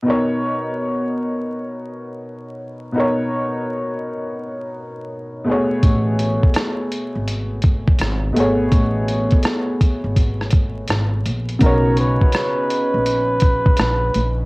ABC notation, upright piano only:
X:1
M:4/4
L:1/8
Q:"Swing 16ths" 1/4=83
K:B
V:1 name="Upright piano"
[B,,B,DAc]8 | [B,,B,DAc]6- [B,,B,DAc] [B,,=A,B,Gc]- | [B,,=A,B,Gc]6- [B,,A,B,Gc] [B,,A,B,Gc]- | [B,,=A,B,Gc]6- [B,,A,B,Gc] z |
[C,B,DFc]8 |]